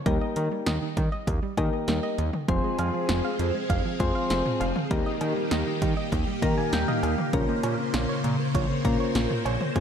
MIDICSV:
0, 0, Header, 1, 6, 480
1, 0, Start_track
1, 0, Tempo, 606061
1, 48, Time_signature, 4, 2, 24, 8
1, 7762, End_track
2, 0, Start_track
2, 0, Title_t, "Synth keys"
2, 0, Program_c, 0, 88
2, 47, Note_on_c, 0, 58, 93
2, 47, Note_on_c, 0, 70, 100
2, 48, Note_on_c, 0, 63, 81
2, 48, Note_on_c, 0, 67, 87
2, 685, Note_off_c, 0, 58, 0
2, 685, Note_off_c, 0, 63, 0
2, 685, Note_off_c, 0, 67, 0
2, 685, Note_off_c, 0, 70, 0
2, 1248, Note_on_c, 0, 58, 90
2, 1248, Note_on_c, 0, 63, 83
2, 1249, Note_on_c, 0, 67, 81
2, 1249, Note_on_c, 0, 70, 98
2, 1726, Note_off_c, 0, 58, 0
2, 1726, Note_off_c, 0, 63, 0
2, 1726, Note_off_c, 0, 67, 0
2, 1726, Note_off_c, 0, 70, 0
2, 1968, Note_on_c, 0, 60, 91
2, 1968, Note_on_c, 0, 65, 84
2, 1968, Note_on_c, 0, 68, 82
2, 1968, Note_on_c, 0, 72, 100
2, 2605, Note_off_c, 0, 60, 0
2, 2605, Note_off_c, 0, 65, 0
2, 2605, Note_off_c, 0, 68, 0
2, 2605, Note_off_c, 0, 72, 0
2, 3168, Note_on_c, 0, 60, 88
2, 3168, Note_on_c, 0, 65, 83
2, 3168, Note_on_c, 0, 68, 80
2, 3168, Note_on_c, 0, 72, 100
2, 3646, Note_off_c, 0, 60, 0
2, 3646, Note_off_c, 0, 65, 0
2, 3646, Note_off_c, 0, 68, 0
2, 3646, Note_off_c, 0, 72, 0
2, 3888, Note_on_c, 0, 63, 84
2, 3888, Note_on_c, 0, 67, 82
2, 3888, Note_on_c, 0, 70, 104
2, 3889, Note_on_c, 0, 58, 95
2, 4525, Note_off_c, 0, 63, 0
2, 4525, Note_off_c, 0, 67, 0
2, 4525, Note_off_c, 0, 70, 0
2, 4526, Note_off_c, 0, 58, 0
2, 5087, Note_on_c, 0, 58, 90
2, 5087, Note_on_c, 0, 63, 81
2, 5087, Note_on_c, 0, 67, 85
2, 5087, Note_on_c, 0, 70, 97
2, 5087, Note_on_c, 0, 82, 74
2, 5199, Note_off_c, 0, 82, 0
2, 5208, Note_on_c, 0, 80, 74
2, 5319, Note_off_c, 0, 80, 0
2, 5327, Note_on_c, 0, 79, 79
2, 5439, Note_off_c, 0, 79, 0
2, 5447, Note_on_c, 0, 77, 70
2, 5559, Note_off_c, 0, 77, 0
2, 5565, Note_off_c, 0, 58, 0
2, 5565, Note_off_c, 0, 63, 0
2, 5565, Note_off_c, 0, 67, 0
2, 5565, Note_off_c, 0, 70, 0
2, 5568, Note_on_c, 0, 77, 73
2, 5791, Note_off_c, 0, 77, 0
2, 5808, Note_on_c, 0, 58, 93
2, 5808, Note_on_c, 0, 65, 84
2, 5808, Note_on_c, 0, 70, 104
2, 5809, Note_on_c, 0, 61, 86
2, 6445, Note_off_c, 0, 58, 0
2, 6445, Note_off_c, 0, 65, 0
2, 6445, Note_off_c, 0, 70, 0
2, 6446, Note_off_c, 0, 61, 0
2, 7007, Note_on_c, 0, 61, 78
2, 7008, Note_on_c, 0, 58, 91
2, 7008, Note_on_c, 0, 65, 82
2, 7008, Note_on_c, 0, 70, 98
2, 7486, Note_off_c, 0, 58, 0
2, 7486, Note_off_c, 0, 61, 0
2, 7486, Note_off_c, 0, 65, 0
2, 7486, Note_off_c, 0, 70, 0
2, 7728, Note_on_c, 0, 56, 93
2, 7728, Note_on_c, 0, 60, 84
2, 7728, Note_on_c, 0, 65, 84
2, 7728, Note_on_c, 0, 68, 100
2, 7762, Note_off_c, 0, 56, 0
2, 7762, Note_off_c, 0, 60, 0
2, 7762, Note_off_c, 0, 65, 0
2, 7762, Note_off_c, 0, 68, 0
2, 7762, End_track
3, 0, Start_track
3, 0, Title_t, "String machine"
3, 0, Program_c, 1, 50
3, 1968, Note_on_c, 1, 53, 83
3, 1968, Note_on_c, 1, 60, 72
3, 1969, Note_on_c, 1, 68, 88
3, 3869, Note_off_c, 1, 53, 0
3, 3869, Note_off_c, 1, 60, 0
3, 3869, Note_off_c, 1, 68, 0
3, 3888, Note_on_c, 1, 51, 79
3, 3889, Note_on_c, 1, 58, 70
3, 3889, Note_on_c, 1, 67, 91
3, 5789, Note_off_c, 1, 51, 0
3, 5790, Note_off_c, 1, 67, 0
3, 5807, Note_on_c, 1, 49, 80
3, 5807, Note_on_c, 1, 72, 88
3, 7697, Note_off_c, 1, 58, 0
3, 7708, Note_off_c, 1, 49, 0
3, 7728, Note_on_c, 1, 53, 80
3, 7728, Note_on_c, 1, 68, 89
3, 7762, Note_off_c, 1, 53, 0
3, 7762, Note_off_c, 1, 68, 0
3, 7762, Note_off_c, 1, 72, 0
3, 7762, End_track
4, 0, Start_track
4, 0, Title_t, "Synth arpeggio sound"
4, 0, Program_c, 2, 84
4, 47, Note_on_c, 2, 55, 97
4, 138, Note_off_c, 2, 55, 0
4, 169, Note_on_c, 2, 75, 86
4, 259, Note_off_c, 2, 75, 0
4, 408, Note_on_c, 2, 55, 77
4, 498, Note_off_c, 2, 55, 0
4, 528, Note_on_c, 2, 75, 96
4, 619, Note_off_c, 2, 75, 0
4, 648, Note_on_c, 2, 51, 78
4, 738, Note_off_c, 2, 51, 0
4, 767, Note_on_c, 2, 55, 79
4, 858, Note_off_c, 2, 55, 0
4, 887, Note_on_c, 2, 75, 85
4, 978, Note_off_c, 2, 75, 0
4, 1129, Note_on_c, 2, 55, 78
4, 1219, Note_off_c, 2, 55, 0
4, 1368, Note_on_c, 2, 51, 75
4, 1458, Note_off_c, 2, 51, 0
4, 1488, Note_on_c, 2, 55, 84
4, 1578, Note_off_c, 2, 55, 0
4, 1608, Note_on_c, 2, 75, 87
4, 1698, Note_off_c, 2, 75, 0
4, 1728, Note_on_c, 2, 51, 80
4, 1818, Note_off_c, 2, 51, 0
4, 1968, Note_on_c, 2, 53, 95
4, 2059, Note_off_c, 2, 53, 0
4, 2089, Note_on_c, 2, 56, 77
4, 2179, Note_off_c, 2, 56, 0
4, 2209, Note_on_c, 2, 77, 87
4, 2299, Note_off_c, 2, 77, 0
4, 2328, Note_on_c, 2, 53, 76
4, 2419, Note_off_c, 2, 53, 0
4, 2448, Note_on_c, 2, 56, 85
4, 2538, Note_off_c, 2, 56, 0
4, 2569, Note_on_c, 2, 77, 85
4, 2659, Note_off_c, 2, 77, 0
4, 2688, Note_on_c, 2, 53, 82
4, 2779, Note_off_c, 2, 53, 0
4, 2808, Note_on_c, 2, 56, 75
4, 2898, Note_off_c, 2, 56, 0
4, 2928, Note_on_c, 2, 77, 99
4, 3019, Note_off_c, 2, 77, 0
4, 3049, Note_on_c, 2, 53, 74
4, 3139, Note_off_c, 2, 53, 0
4, 3168, Note_on_c, 2, 56, 89
4, 3259, Note_off_c, 2, 56, 0
4, 3288, Note_on_c, 2, 77, 82
4, 3378, Note_off_c, 2, 77, 0
4, 3408, Note_on_c, 2, 53, 82
4, 3498, Note_off_c, 2, 53, 0
4, 3648, Note_on_c, 2, 77, 87
4, 3738, Note_off_c, 2, 77, 0
4, 3888, Note_on_c, 2, 55, 102
4, 3978, Note_off_c, 2, 55, 0
4, 4009, Note_on_c, 2, 75, 82
4, 4099, Note_off_c, 2, 75, 0
4, 4248, Note_on_c, 2, 55, 77
4, 4338, Note_off_c, 2, 55, 0
4, 4368, Note_on_c, 2, 75, 97
4, 4458, Note_off_c, 2, 75, 0
4, 4488, Note_on_c, 2, 51, 79
4, 4578, Note_off_c, 2, 51, 0
4, 4608, Note_on_c, 2, 55, 81
4, 4698, Note_off_c, 2, 55, 0
4, 4727, Note_on_c, 2, 75, 84
4, 4818, Note_off_c, 2, 75, 0
4, 4966, Note_on_c, 2, 55, 78
4, 5057, Note_off_c, 2, 55, 0
4, 5207, Note_on_c, 2, 51, 77
4, 5298, Note_off_c, 2, 51, 0
4, 5328, Note_on_c, 2, 55, 85
4, 5418, Note_off_c, 2, 55, 0
4, 5448, Note_on_c, 2, 75, 85
4, 5538, Note_off_c, 2, 75, 0
4, 5568, Note_on_c, 2, 51, 81
4, 5658, Note_off_c, 2, 51, 0
4, 5808, Note_on_c, 2, 49, 96
4, 5898, Note_off_c, 2, 49, 0
4, 5927, Note_on_c, 2, 58, 76
4, 6018, Note_off_c, 2, 58, 0
4, 6047, Note_on_c, 2, 73, 92
4, 6138, Note_off_c, 2, 73, 0
4, 6168, Note_on_c, 2, 49, 74
4, 6258, Note_off_c, 2, 49, 0
4, 6287, Note_on_c, 2, 58, 86
4, 6378, Note_off_c, 2, 58, 0
4, 6407, Note_on_c, 2, 73, 90
4, 6498, Note_off_c, 2, 73, 0
4, 6528, Note_on_c, 2, 49, 80
4, 6618, Note_off_c, 2, 49, 0
4, 6647, Note_on_c, 2, 58, 77
4, 6738, Note_off_c, 2, 58, 0
4, 6768, Note_on_c, 2, 73, 103
4, 6859, Note_off_c, 2, 73, 0
4, 6888, Note_on_c, 2, 49, 76
4, 6979, Note_off_c, 2, 49, 0
4, 7008, Note_on_c, 2, 58, 85
4, 7099, Note_off_c, 2, 58, 0
4, 7127, Note_on_c, 2, 73, 86
4, 7218, Note_off_c, 2, 73, 0
4, 7248, Note_on_c, 2, 49, 81
4, 7339, Note_off_c, 2, 49, 0
4, 7488, Note_on_c, 2, 73, 89
4, 7579, Note_off_c, 2, 73, 0
4, 7728, Note_on_c, 2, 56, 96
4, 7762, Note_off_c, 2, 56, 0
4, 7762, End_track
5, 0, Start_track
5, 0, Title_t, "Analog synth bass"
5, 0, Program_c, 3, 38
5, 48, Note_on_c, 3, 39, 108
5, 145, Note_off_c, 3, 39, 0
5, 289, Note_on_c, 3, 51, 103
5, 386, Note_off_c, 3, 51, 0
5, 529, Note_on_c, 3, 39, 109
5, 626, Note_off_c, 3, 39, 0
5, 768, Note_on_c, 3, 51, 98
5, 865, Note_off_c, 3, 51, 0
5, 1009, Note_on_c, 3, 39, 101
5, 1106, Note_off_c, 3, 39, 0
5, 1247, Note_on_c, 3, 51, 97
5, 1345, Note_off_c, 3, 51, 0
5, 1488, Note_on_c, 3, 39, 111
5, 1585, Note_off_c, 3, 39, 0
5, 1729, Note_on_c, 3, 39, 113
5, 1826, Note_off_c, 3, 39, 0
5, 1967, Note_on_c, 3, 29, 109
5, 2065, Note_off_c, 3, 29, 0
5, 2208, Note_on_c, 3, 41, 95
5, 2306, Note_off_c, 3, 41, 0
5, 2449, Note_on_c, 3, 29, 111
5, 2546, Note_off_c, 3, 29, 0
5, 2688, Note_on_c, 3, 41, 110
5, 2785, Note_off_c, 3, 41, 0
5, 2928, Note_on_c, 3, 29, 102
5, 3026, Note_off_c, 3, 29, 0
5, 3167, Note_on_c, 3, 41, 106
5, 3265, Note_off_c, 3, 41, 0
5, 3407, Note_on_c, 3, 29, 104
5, 3505, Note_off_c, 3, 29, 0
5, 3648, Note_on_c, 3, 29, 101
5, 3745, Note_off_c, 3, 29, 0
5, 3888, Note_on_c, 3, 39, 121
5, 3985, Note_off_c, 3, 39, 0
5, 4128, Note_on_c, 3, 51, 104
5, 4226, Note_off_c, 3, 51, 0
5, 4369, Note_on_c, 3, 39, 110
5, 4466, Note_off_c, 3, 39, 0
5, 4608, Note_on_c, 3, 51, 101
5, 4705, Note_off_c, 3, 51, 0
5, 4849, Note_on_c, 3, 39, 117
5, 4946, Note_off_c, 3, 39, 0
5, 5087, Note_on_c, 3, 51, 94
5, 5185, Note_off_c, 3, 51, 0
5, 5328, Note_on_c, 3, 39, 102
5, 5425, Note_off_c, 3, 39, 0
5, 5568, Note_on_c, 3, 39, 111
5, 5665, Note_off_c, 3, 39, 0
5, 5808, Note_on_c, 3, 34, 105
5, 5905, Note_off_c, 3, 34, 0
5, 6048, Note_on_c, 3, 46, 101
5, 6145, Note_off_c, 3, 46, 0
5, 6288, Note_on_c, 3, 34, 103
5, 6386, Note_off_c, 3, 34, 0
5, 6527, Note_on_c, 3, 46, 111
5, 6625, Note_off_c, 3, 46, 0
5, 6768, Note_on_c, 3, 34, 109
5, 6866, Note_off_c, 3, 34, 0
5, 7007, Note_on_c, 3, 46, 95
5, 7105, Note_off_c, 3, 46, 0
5, 7247, Note_on_c, 3, 34, 111
5, 7345, Note_off_c, 3, 34, 0
5, 7488, Note_on_c, 3, 34, 103
5, 7585, Note_off_c, 3, 34, 0
5, 7728, Note_on_c, 3, 29, 101
5, 7762, Note_off_c, 3, 29, 0
5, 7762, End_track
6, 0, Start_track
6, 0, Title_t, "Drums"
6, 47, Note_on_c, 9, 36, 118
6, 48, Note_on_c, 9, 42, 70
6, 127, Note_off_c, 9, 36, 0
6, 127, Note_off_c, 9, 42, 0
6, 286, Note_on_c, 9, 42, 81
6, 365, Note_off_c, 9, 42, 0
6, 526, Note_on_c, 9, 38, 117
6, 527, Note_on_c, 9, 42, 93
6, 606, Note_off_c, 9, 38, 0
6, 606, Note_off_c, 9, 42, 0
6, 768, Note_on_c, 9, 36, 93
6, 768, Note_on_c, 9, 42, 79
6, 847, Note_off_c, 9, 36, 0
6, 848, Note_off_c, 9, 42, 0
6, 1009, Note_on_c, 9, 36, 92
6, 1011, Note_on_c, 9, 42, 76
6, 1088, Note_off_c, 9, 36, 0
6, 1090, Note_off_c, 9, 42, 0
6, 1247, Note_on_c, 9, 36, 96
6, 1249, Note_on_c, 9, 42, 75
6, 1249, Note_on_c, 9, 56, 72
6, 1326, Note_off_c, 9, 36, 0
6, 1328, Note_off_c, 9, 42, 0
6, 1328, Note_off_c, 9, 56, 0
6, 1487, Note_on_c, 9, 42, 83
6, 1489, Note_on_c, 9, 38, 99
6, 1566, Note_off_c, 9, 42, 0
6, 1568, Note_off_c, 9, 38, 0
6, 1730, Note_on_c, 9, 42, 64
6, 1809, Note_off_c, 9, 42, 0
6, 1848, Note_on_c, 9, 47, 88
6, 1927, Note_off_c, 9, 47, 0
6, 1968, Note_on_c, 9, 36, 116
6, 1968, Note_on_c, 9, 42, 71
6, 2047, Note_off_c, 9, 36, 0
6, 2048, Note_off_c, 9, 42, 0
6, 2206, Note_on_c, 9, 42, 82
6, 2207, Note_on_c, 9, 56, 66
6, 2285, Note_off_c, 9, 42, 0
6, 2286, Note_off_c, 9, 56, 0
6, 2446, Note_on_c, 9, 38, 110
6, 2446, Note_on_c, 9, 42, 89
6, 2525, Note_off_c, 9, 38, 0
6, 2525, Note_off_c, 9, 42, 0
6, 2688, Note_on_c, 9, 42, 77
6, 2767, Note_off_c, 9, 42, 0
6, 2928, Note_on_c, 9, 36, 89
6, 2930, Note_on_c, 9, 42, 71
6, 3008, Note_off_c, 9, 36, 0
6, 3009, Note_off_c, 9, 42, 0
6, 3167, Note_on_c, 9, 36, 98
6, 3169, Note_on_c, 9, 42, 75
6, 3246, Note_off_c, 9, 36, 0
6, 3248, Note_off_c, 9, 42, 0
6, 3407, Note_on_c, 9, 42, 83
6, 3409, Note_on_c, 9, 38, 104
6, 3486, Note_off_c, 9, 42, 0
6, 3488, Note_off_c, 9, 38, 0
6, 3530, Note_on_c, 9, 45, 90
6, 3609, Note_off_c, 9, 45, 0
6, 3647, Note_on_c, 9, 56, 71
6, 3650, Note_on_c, 9, 42, 67
6, 3726, Note_off_c, 9, 56, 0
6, 3729, Note_off_c, 9, 42, 0
6, 3768, Note_on_c, 9, 47, 92
6, 3847, Note_off_c, 9, 47, 0
6, 3888, Note_on_c, 9, 36, 117
6, 3888, Note_on_c, 9, 42, 73
6, 3967, Note_off_c, 9, 36, 0
6, 3967, Note_off_c, 9, 42, 0
6, 4126, Note_on_c, 9, 42, 83
6, 4126, Note_on_c, 9, 56, 69
6, 4205, Note_off_c, 9, 42, 0
6, 4205, Note_off_c, 9, 56, 0
6, 4366, Note_on_c, 9, 38, 113
6, 4366, Note_on_c, 9, 42, 93
6, 4445, Note_off_c, 9, 38, 0
6, 4445, Note_off_c, 9, 42, 0
6, 4608, Note_on_c, 9, 36, 97
6, 4608, Note_on_c, 9, 42, 79
6, 4687, Note_off_c, 9, 36, 0
6, 4688, Note_off_c, 9, 42, 0
6, 4849, Note_on_c, 9, 36, 90
6, 4851, Note_on_c, 9, 42, 73
6, 4928, Note_off_c, 9, 36, 0
6, 4930, Note_off_c, 9, 42, 0
6, 5087, Note_on_c, 9, 36, 96
6, 5089, Note_on_c, 9, 42, 76
6, 5166, Note_off_c, 9, 36, 0
6, 5168, Note_off_c, 9, 42, 0
6, 5328, Note_on_c, 9, 42, 78
6, 5329, Note_on_c, 9, 38, 104
6, 5407, Note_off_c, 9, 42, 0
6, 5409, Note_off_c, 9, 38, 0
6, 5451, Note_on_c, 9, 45, 91
6, 5530, Note_off_c, 9, 45, 0
6, 5568, Note_on_c, 9, 56, 70
6, 5571, Note_on_c, 9, 42, 67
6, 5648, Note_off_c, 9, 56, 0
6, 5650, Note_off_c, 9, 42, 0
6, 5689, Note_on_c, 9, 47, 90
6, 5768, Note_off_c, 9, 47, 0
6, 5807, Note_on_c, 9, 36, 121
6, 5807, Note_on_c, 9, 42, 76
6, 5887, Note_off_c, 9, 36, 0
6, 5887, Note_off_c, 9, 42, 0
6, 6047, Note_on_c, 9, 42, 86
6, 6047, Note_on_c, 9, 56, 67
6, 6126, Note_off_c, 9, 42, 0
6, 6126, Note_off_c, 9, 56, 0
6, 6287, Note_on_c, 9, 38, 114
6, 6287, Note_on_c, 9, 42, 92
6, 6366, Note_off_c, 9, 38, 0
6, 6366, Note_off_c, 9, 42, 0
6, 6528, Note_on_c, 9, 42, 79
6, 6607, Note_off_c, 9, 42, 0
6, 6768, Note_on_c, 9, 36, 92
6, 6770, Note_on_c, 9, 42, 73
6, 6847, Note_off_c, 9, 36, 0
6, 6850, Note_off_c, 9, 42, 0
6, 7007, Note_on_c, 9, 36, 97
6, 7009, Note_on_c, 9, 42, 76
6, 7086, Note_off_c, 9, 36, 0
6, 7088, Note_off_c, 9, 42, 0
6, 7247, Note_on_c, 9, 42, 81
6, 7249, Note_on_c, 9, 38, 103
6, 7327, Note_off_c, 9, 42, 0
6, 7329, Note_off_c, 9, 38, 0
6, 7370, Note_on_c, 9, 45, 88
6, 7449, Note_off_c, 9, 45, 0
6, 7488, Note_on_c, 9, 56, 70
6, 7491, Note_on_c, 9, 42, 65
6, 7567, Note_off_c, 9, 56, 0
6, 7570, Note_off_c, 9, 42, 0
6, 7609, Note_on_c, 9, 47, 87
6, 7688, Note_off_c, 9, 47, 0
6, 7727, Note_on_c, 9, 36, 120
6, 7728, Note_on_c, 9, 42, 72
6, 7762, Note_off_c, 9, 36, 0
6, 7762, Note_off_c, 9, 42, 0
6, 7762, End_track
0, 0, End_of_file